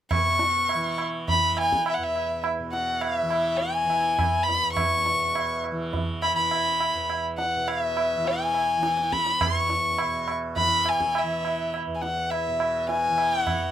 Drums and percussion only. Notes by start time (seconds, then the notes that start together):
0.11 tabla na, tabla ge
0.39 tabla te
0.69 tabla na
0.98 tabla na
1.28 tabla tin, tabla ge
1.57 tabla na
1.73 tabla ke
1.86 tabla na
2.16 tabla na
2.44 tabla na
2.73 tabla te
3.01 tabla na
3.30 tabla na
3.60 tabla tin
3.90 tabla na
4.19 tabla na, tabla ge
4.49 tabla te
4.77 tabla na, tabla ge
5.06 tabla te
5.35 tabla na
5.64 tabla na
5.93 tabla tin, tabla ge
6.22 tabla na
6.51 tabla na
6.80 tabla na
7.10 tabla na
7.38 tabla te
7.68 tabla na
7.97 tabla na
8.25 tabla tin
8.54 tabla na
8.83 tabla te
8.97 tabla te
9.13 tabla ke
9.26 tabla te
9.41 tabla na, tabla ge
9.70 tabla te
9.98 tabla na
10.28 tabla na
10.56 tabla tin, tabla ge
10.86 tabla na
11.01 tabla ke
11.15 tabla na
11.45 tabla na
11.74 tabla na
12.03 tabla te
12.31 tabla na
12.60 tabla na
12.89 tabla tin
13.18 tabla na
13.47 tabla na, tabla ge